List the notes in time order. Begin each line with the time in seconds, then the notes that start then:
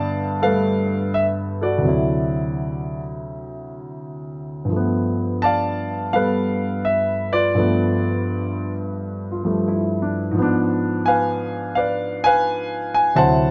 Already playing: G2 D3 A3 B3 D5 F5 A5
0.42 G3 A4 B4 F5
0.47 A3
1.14 E5
1.61 F#4 A4 D5
1.78 D2
1.82 C3 F#3
1.89 E4
4.65 G2 F3
4.73 A3 B3
5.42 D5 F5 A5
6.13 G3 B3 A4 B4 F5
6.85 E5
7.33 F4 B4 D5
7.55 G2 F3 A3
7.59 B3
9.32 F4
9.44 F3 G3 A3
9.68 E4
10.02 D4
10.31 G#2 F3
10.38 B3 D4
11.06 B4 F5 G#5
11.75 B4 D5 F5
12.24 B4 F5 G#5
12.94 G#5
13.15 D2 C3 F#3 E4 C5 F#5 A5